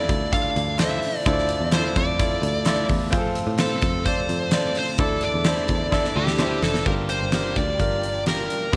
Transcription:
0.00 1.27 D3 medium
0.00 3.09 D3 medium
0.00 6.83 A3 medium
0.00 3.09 D4 medium
0.00 0.79 E4 loud
0.00 0.33 F4 loud
0.00 0.34 A4 medium
0.00 0.33 D5 medium
0.00 0.34 D5 loud
0.09 0.52 D2 medium
0.09 kick medium
0.09 closed hi-hat medium
0.32 0.77 D4 medium
0.32 0.77 F4 medium
0.32 0.77 A4 medium
0.32 0.78 D5 medium
0.32 0.76 F5 loud
0.32 kick medium
0.32 closed hi-hat medium
0.56 0.99 D2 loud
0.56 closed hi-hat medium
0.79 1.23 E4 medium
0.79 1.24 F4 medium
0.79 1.24 A4 medium
0.79 1.24 C5 medium
0.79 1.27 E5 loud
0.79 snare loud
0.79 clap loud
0.79 closed hi-hat loud
1.03 open hi-hat medium
1.26 1.59 D2 loud
1.26 1.92 D3 medium
1.26 1.70 E4 medium
1.26 1.70 F4 medium
1.26 1.71 A4 medium
1.26 1.32 C5 medium
1.26 1.70 D5 loud
1.26 kick loud
1.26 closed hi-hat medium
1.33 1.74 D5 loud
1.38 snare soft
1.49 closed hi-hat medium
1.61 1.93 E2 medium
1.72 2.17 E4 medium
1.72 2.18 F4 medium
1.72 2.18 A4 medium
1.72 1.97 C5 medium
1.72 2.18 D5 medium
1.72 snare loud
1.72 clap medium
1.72 closed hi-hat medium
1.96 2.39 F2 medium
1.96 2.86 D5 medium
1.96 kick medium
1.96 closed hi-hat medium
2.19 2.64 E4 medium
2.19 2.64 F4 medium
2.19 2.64 A4 medium
2.19 2.64 D5 medium
2.19 kick medium
2.19 closed hi-hat medium
2.42 2.86 D2 medium
2.42 closed hi-hat medium
2.66 3.10 E4 medium
2.66 3.10 F4 medium
2.66 3.11 A4 medium
2.66 3.11 D5 loud
2.66 snare loud
2.66 clap loud
2.66 closed hi-hat medium
2.89 3.11 E2 medium
2.89 kick medium
2.89 open hi-hat medium
3.11 3.45 F2 loud
3.11 4.97 C3 medium
3.11 3.56 C4 loud
3.11 3.56 F4 loud
3.11 3.18 G#4 medium
3.11 6.83 A4 medium
3.11 3.57 C5 loud
3.11 kick loud
3.11 closed hi-hat medium
3.18 3.58 A4 loud
3.35 closed hi-hat medium
3.47 3.80 A2 medium
3.58 4.03 C4 medium
3.58 4.03 F4 medium
3.58 4.04 A4 medium
3.58 4.06 A4 medium
3.58 4.04 C5 medium
3.58 snare loud
3.58 clap medium
3.58 closed hi-hat medium
3.82 4.26 F2 loud
3.82 kick medium
3.82 closed hi-hat medium
4.05 4.50 C4 medium
4.05 4.50 F4 medium
4.05 4.51 A4 medium
4.05 4.50 C5 medium
4.05 4.51 D5 medium
4.05 kick medium
4.05 closed hi-hat medium
4.29 4.73 F2 medium
4.29 closed hi-hat medium
4.51 4.97 C4 medium
4.51 4.97 F4 medium
4.51 4.97 A4 medium
4.51 4.97 C5 medium
4.51 4.77 D5 loud
4.51 snare loud
4.51 clap loud
4.51 closed hi-hat medium
4.75 4.99 C5 loud
4.75 open hi-hat medium
4.98 5.32 D2 loud
4.98 5.65 D3 medium
4.98 6.85 D3 medium
4.98 6.84 E3 medium
4.98 5.43 D4 medium
4.98 5.44 E4 medium
4.98 6.85 E4 medium
4.98 5.44 A4 medium
4.98 5.24 A4 loud
4.98 5.44 D5 loud
4.98 kick loud
4.98 closed hi-hat medium
5.21 6.59 D5 loud
5.21 closed hi-hat medium
5.34 5.67 E2 medium
5.44 5.89 D4 medium
5.44 5.90 E4 medium
5.44 5.91 A4 medium
5.44 5.91 C5 medium
5.44 snare loud
5.44 clap medium
5.44 closed hi-hat medium
5.68 6.13 E2 medium
5.68 kick medium
5.68 closed hi-hat medium
5.91 6.36 D4 medium
5.91 6.37 E4 medium
5.91 6.37 A4 medium
5.91 6.37 E5 medium
5.91 kick medium
5.91 snare medium
6.04 snare soft
6.16 6.60 D2 medium
6.16 6.64 G4 medium
6.27 snare medium
6.38 6.83 D4 medium
6.38 6.84 E4 medium
6.38 6.84 A4 medium
6.38 6.84 C5 loud
6.38 snare medium
6.38 clap medium
6.63 6.85 F1 medium
6.63 6.86 A4 medium
6.63 snare medium
6.74 snare medium
6.86 7.19 G1 medium
6.86 7.53 G2 soft
6.86 8.72 D3 medium
6.86 8.76 G3 soft
6.86 8.71 A#3 medium
6.86 7.30 D4 medium
6.86 8.71 F4 medium
6.86 7.31 F4 medium
6.86 8.76 G4 medium
6.86 7.31 G4 medium
6.86 6.93 A#4 medium
6.86 7.31 A#4 medium
6.86 kick medium
6.86 crash medium
7.09 7.58 C5 medium
7.09 closed hi-hat medium
7.21 7.54 G1 medium
7.32 7.77 D4 medium
7.32 7.78 F4 medium
7.32 7.78 G4 medium
7.32 7.78 A#4 medium
7.32 snare loud
7.32 closed hi-hat medium
7.56 7.78 D2 medium
7.56 8.23 D5 medium
7.56 kick medium
7.56 closed hi-hat medium
7.79 8.46 G1 medium
7.79 8.24 D4 medium
7.79 8.24 F4 medium
7.79 8.24 G4 medium
7.79 8.25 A#4 medium
7.79 kick medium
7.79 closed hi-hat medium
8.03 closed hi-hat medium
8.26 8.71 D4 medium
8.26 8.71 F4 medium
8.26 8.71 G4 medium
8.26 8.72 A#4 medium
8.26 8.76 A#4 medium
8.26 snare medium
8.26 closed hi-hat medium
8.50 closed hi-hat medium
8.72 8.76 G2 medium
8.72 8.76 C3 medium
8.72 8.76 E3 soft
8.72 8.76 C4 medium
8.72 8.76 E4 medium

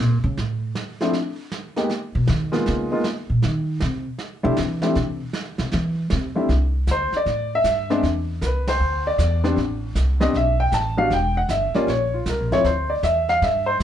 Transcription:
0.00 0.23 A#2 medium
0.24 0.37 C#3 medium
0.37 0.73 A2 medium
0.37 brush sweep soft
0.37 snare soft
0.75 snare medium
1.01 1.12 F3 medium
1.01 1.12 A3 medium
1.01 1.13 C4 medium
1.01 1.13 D4 soft
1.01 1.13 E4 medium
1.01 snare soft
1.13 brush sweep soft
1.13 snare soft
1.52 snare medium
1.76 1.88 G#3 soft
1.76 1.88 A#3 soft
1.76 1.89 B3 soft
1.76 1.88 D#4 soft
1.76 1.89 G4 medium
1.76 snare soft
1.90 brush sweep soft
1.90 snare soft
2.15 2.28 B2 medium
2.27 2.64 D#3 medium
2.27 snare medium
2.52 2.88 G#3 medium
2.52 2.88 A#3 medium
2.52 2.88 B3 medium
2.52 2.88 D#4 medium
2.52 2.88 F4 medium
2.52 snare soft
2.66 2.92 C#3 medium
2.66 brush sweep medium
2.66 snare soft
2.92 3.03 G#3 medium
2.92 3.04 A#3 medium
2.92 3.04 B3 medium
2.92 3.04 D#4 medium
2.92 3.04 F4 medium
3.04 snare medium
3.30 3.42 A#2 medium
3.42 3.79 D#3 medium
3.42 brush sweep medium
3.42 snare soft
3.80 4.06 C3 medium
3.80 snare medium
4.19 brush sweep soft
4.19 snare soft
4.43 4.57 C3 medium
4.43 4.56 G3 medium
4.43 4.56 A3 medium
4.43 4.56 C4 medium
4.43 4.56 D4 medium
4.43 4.56 E4 medium
4.57 4.94 E3 loud
4.57 snare medium
4.82 4.94 G3 medium
4.82 4.94 A3 soft
4.82 4.94 C4 soft
4.82 4.95 D4 soft
4.82 4.94 E4 medium
4.82 snare soft
4.95 5.20 C3 medium
4.95 brush sweep medium
4.95 snare soft
5.33 snare medium
5.58 5.72 C3 medium
5.58 snare soft
5.71 6.09 E3 loud
5.71 brush sweep medium
5.71 snare soft
6.10 6.27 C3 medium
6.10 snare medium
6.35 6.48 G3 medium
6.35 6.48 A3 soft
6.35 6.48 C4 soft
6.35 6.48 D4 soft
6.35 6.48 E4 medium
6.49 6.86 C2 medium
6.49 brush sweep soft
6.49 kick soft
6.49 snare soft
6.87 7.11 D2 medium
6.87 kick soft
6.87 snare medium
6.87 hi-hat pedal medium
6.91 7.14 C5 medium
7.12 muted upright bass stroke soft
7.12 snare soft
7.17 7.51 D5 medium
7.26 7.63 A2 medium
7.26 brush sweep soft
7.26 kick soft
7.26 snare soft
7.55 8.02 E5 medium
7.64 8.02 G2 medium
7.64 kick soft
7.64 snare medium
7.64 hi-hat pedal soft
7.90 8.02 G#3 medium
7.90 8.02 B3 medium
7.90 8.02 C4 medium
7.90 8.02 D4 medium
7.90 snare soft
8.03 8.40 E2 medium
8.03 brush sweep soft
8.03 kick soft
8.03 snare soft
8.41 8.79 C2 medium
8.41 8.44 A#4 medium
8.41 kick soft
8.41 snare medium
8.41 hi-hat pedal medium
8.46 8.68 B4 medium
8.67 9.03 C5 medium
8.67 snare medium
8.67 ride medium
8.80 9.17 D2 medium
8.80 brush sweep soft
9.07 9.54 D5 medium
9.18 9.56 E2 medium
9.18 kick soft
9.18 snare medium
9.18 hi-hat pedal medium
9.44 9.56 G3 medium
9.44 9.56 B3 medium
9.44 9.56 C4 medium
9.44 9.56 D4 medium
9.44 snare soft
9.56 9.94 A1 medium
9.56 brush sweep soft
9.56 kick soft
9.56 snare soft
9.95 10.33 C2 medium
9.95 kick soft
9.95 snare medium
9.95 hi-hat pedal medium
10.20 10.32 G3 medium
10.20 10.33 B3 medium
10.20 10.33 C4 medium
10.20 10.33 D4 medium
10.20 10.34 D#5 medium
10.20 snare soft
10.33 10.71 B1 medium
10.33 10.60 E5 medium
10.33 brush sweep soft
10.33 kick soft
10.33 snare soft
10.60 10.73 G5 medium
10.72 11.09 A1 medium
10.72 10.98 A5 medium
10.72 kick soft
10.72 snare medium
10.72 hi-hat pedal medium
10.97 11.10 G3 medium
10.97 11.10 B3 medium
10.97 11.10 D4 medium
10.97 11.10 F#4 medium
10.97 11.11 F5 medium
11.10 11.48 E1 medium
11.10 11.37 G5 medium
11.10 brush sweep soft
11.10 kick soft
11.10 snare soft
11.37 11.50 F#5 medium
11.49 11.72 G1 medium
11.49 11.75 E5 medium
11.49 kick soft
11.49 snare medium
11.49 hi-hat pedal medium
11.74 11.87 G3 medium
11.74 11.87 A#3 medium
11.74 11.87 C#4 medium
11.74 11.87 F4 medium
11.74 11.88 D5 medium
11.74 muted upright bass stroke soft
11.74 snare soft
11.87 12.25 A#1 medium
11.87 12.13 C#5 medium
11.87 brush sweep soft
11.87 kick soft
11.87 snare soft
12.14 12.27 F4 soft
12.26 12.39 C2 medium
12.26 12.52 A#4 medium
12.26 kick soft
12.26 snare medium
12.26 hi-hat pedal medium
12.39 12.50 A#1 soft
12.51 12.64 G1 medium
12.51 12.64 F3 medium
12.51 12.64 A3 medium
12.51 12.64 C4 medium
12.51 12.64 E4 medium
12.51 12.66 C#5 medium
12.51 snare soft
12.64 13.02 D2 medium
12.64 12.90 C5 medium
12.64 brush sweep soft
12.64 kick soft
12.64 snare soft
12.90 13.03 D5 medium
13.03 13.41 E2 medium
13.03 13.28 E5 medium
13.03 kick soft
13.03 snare medium
13.03 hi-hat pedal soft
13.29 13.42 F5 loud
13.29 snare soft
13.42 13.79 G2 medium
13.42 13.68 E5 medium
13.42 brush sweep soft
13.42 kick soft
13.42 snare soft
13.66 13.75 C5 medium
13.80 13.83 A2 medium

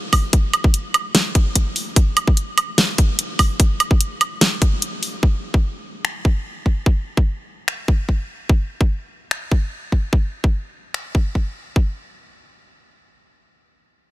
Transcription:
0.13 kick medium
0.13 open hi-hat medium
0.13 high woodblock medium
0.33 kick loud
0.33 closed hi-hat medium
0.54 closed hi-hat medium
0.54 high woodblock medium
0.64 kick loud
0.74 closed hi-hat medium
0.94 closed hi-hat medium
0.94 high woodblock medium
1.15 snare loud
1.15 closed hi-hat medium
1.35 kick loud
1.35 closed hi-hat medium
1.56 kick medium
1.56 closed hi-hat medium
1.76 open hi-hat medium
1.96 kick loud
1.96 closed hi-hat medium
2.17 closed hi-hat medium
2.17 high woodblock medium
2.27 kick loud
2.37 closed hi-hat medium
2.58 closed hi-hat medium
2.58 high woodblock medium
2.78 snare loud
2.78 closed hi-hat medium
2.98 kick loud
2.98 closed hi-hat medium
3.19 closed hi-hat medium
3.39 kick medium
3.39 open hi-hat medium
3.39 high woodblock medium
3.60 kick loud
3.60 closed hi-hat medium
3.80 closed hi-hat medium
3.80 high woodblock medium
3.91 kick loud
4.01 closed hi-hat medium
4.21 closed hi-hat medium
4.21 high woodblock medium
4.41 snare loud
4.41 closed hi-hat medium
4.62 kick loud
4.62 closed hi-hat medium
4.82 closed hi-hat medium
5.03 open hi-hat medium
5.23 kick loud
5.54 kick loud
6.05 finger snap loud
6.25 kick loud
6.66 kick medium
6.86 kick loud
7.17 kick loud
7.68 finger snap medium
7.88 kick loud
8.09 kick medium
8.49 kick loud
8.81 kick loud
9.31 finger snap medium
9.52 kick loud
9.92 kick medium
10.13 kick loud
10.44 kick loud
10.94 finger snap medium
11.15 kick loud
11.35 kick medium
11.76 kick loud

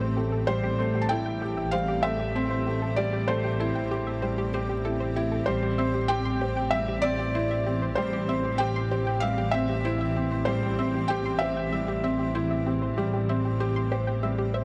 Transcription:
0.00 5.45 A1 medium
0.00 0.48 G3 medium
0.00 0.17 A3 loud
0.00 5.44 A3 medium
0.00 0.15 C4 loud
0.00 14.64 C4 medium
0.00 1.11 E4 loud
0.00 1.42 G4 medium
0.00 14.64 G4 medium
0.00 0.07 C5 medium
0.17 0.47 A3 medium
0.17 0.31 G4 medium
0.32 0.42 A4 medium
0.47 0.78 G3 loud
0.47 0.57 G4 loud
0.47 1.05 C5 loud
0.64 0.73 G4 loud
0.79 0.97 A3 loud
0.79 0.89 C5 loud
0.95 1.04 G4 medium
1.01 1.09 A5 medium
1.09 1.40 E4 loud
1.09 1.20 A4 loud
1.09 1.74 G5 loud
1.26 1.40 G5 medium
1.42 1.51 G4 loud
1.42 1.72 G4 medium
1.57 1.67 E5 medium
1.71 2.03 G3 medium
1.71 1.82 C5 loud
1.71 2.04 F5 loud
1.88 1.98 G4 loud
2.03 2.34 A3 medium
2.03 2.14 C5 loud
2.03 3.00 E5 loud
2.19 2.25 G4 medium
2.35 2.65 C4 loud
2.35 2.45 A4 loud
2.51 2.56 C5 medium
2.66 2.96 A3 medium
2.66 2.81 G4 medium
2.82 2.92 A4 medium
2.96 3.28 G3 loud
2.96 3.07 G4 loud
2.96 3.29 D5 loud
3.13 3.23 G4 loud
3.28 3.47 A3 loud
3.28 4.49 C5 loud
3.28 3.39 C5 loud
3.44 3.54 G4 medium
3.60 3.90 E4 loud
3.60 3.70 A4 loud
3.75 3.90 G5 medium
3.91 4.21 G4 medium
3.91 4.01 G4 loud
4.07 4.17 E5 medium
4.22 4.52 G3 medium
4.22 4.32 C5 loud
4.38 4.48 G4 loud
4.54 4.72 G4 medium
4.54 4.64 C5 loud
4.69 4.75 G4 medium
4.85 5.15 E4 medium
4.85 4.95 A4 loud
5.00 5.06 C5 medium
5.16 5.46 E4 loud
5.16 5.31 G4 medium
5.32 5.42 A4 medium
5.46 14.64 A1 loud
5.46 14.64 E3 medium
5.46 5.77 G3 loud
5.46 5.57 G4 loud
5.46 6.11 C5 loud
5.63 5.73 G4 loud
5.78 5.97 C4 loud
5.78 5.88 E5 loud
5.94 6.04 G4 medium
6.08 6.40 G4 loud
6.08 6.20 C5 loud
6.08 6.74 G5 loud
6.25 6.40 C6 medium
6.41 6.51 G4 loud
6.41 6.71 C5 medium
6.57 6.67 G5 medium
6.71 7.02 G3 medium
6.71 7.04 E5 loud
6.71 6.82 E5 loud
6.88 6.98 G4 loud
7.02 7.34 C4 loud
7.02 7.99 D5 loud
7.02 7.13 E5 loud
7.19 7.25 G4 medium
7.35 7.65 E4 loud
7.35 7.45 C5 medium
7.51 7.57 E5 medium
7.66 7.96 C4 medium
7.66 7.81 G4 medium
7.82 7.92 C5 medium
7.95 8.27 G3 loud
7.95 8.07 G4 loud
7.95 8.61 C5 loud
8.13 8.23 G4 loud
8.29 8.47 C4 loud
8.29 8.38 E5 loud
8.45 8.54 G4 medium
8.58 8.90 G4 loud
8.58 8.70 C5 loud
8.58 9.24 G5 loud
8.76 8.90 C6 medium
8.91 9.01 G4 loud
8.91 9.21 C5 medium
9.07 9.17 G5 medium
9.20 9.52 G3 medium
9.20 9.32 E5 loud
9.20 9.54 F5 loud
9.38 9.48 G4 loud
9.51 9.84 C4 medium
9.51 10.49 E5 loud
9.51 9.63 E5 loud
9.69 9.75 G4 medium
9.85 10.15 E4 loud
9.85 9.95 C5 loud
10.01 10.07 E5 medium
10.16 10.46 C4 medium
10.16 10.31 G4 medium
10.32 10.42 C5 medium
10.45 10.77 G3 loud
10.45 10.57 G4 loud
10.45 11.11 C5 medium
10.63 10.73 G4 loud
10.79 10.97 C4 loud
10.79 10.88 E5 loud
10.94 11.04 G4 medium
11.08 11.40 G4 loud
11.08 11.20 C5 loud
11.08 11.41 G5 loud
11.25 11.40 C6 medium
11.39 11.51 G4 loud
11.39 11.71 C5 medium
11.39 14.64 E5 loud
11.57 11.67 G5 medium
11.72 12.02 G3 medium
11.72 11.82 E5 loud
11.88 11.98 G4 loud
12.04 12.34 C4 loud
12.04 12.14 E5 loud
12.19 12.25 G4 medium
12.35 12.65 E4 loud
12.35 12.45 C5 medium
12.51 12.57 E5 medium
12.66 12.96 C4 medium
12.66 12.81 G4 medium
12.82 12.92 C5 medium
12.97 13.27 G3 loud
12.97 13.07 G4 loud
13.13 13.23 G4 loud
13.29 13.47 C4 loud
13.29 13.39 E5 loud
13.45 13.54 G4 medium
13.60 13.90 G4 loud
13.60 13.70 C5 loud
13.76 13.90 C6 medium
13.92 14.01 G4 loud
13.92 14.21 C5 medium
14.07 14.17 G5 medium
14.23 14.53 G3 medium
14.23 14.33 E5 loud
14.38 14.48 G4 loud
14.54 14.64 C5 medium
14.54 14.64 E5 loud

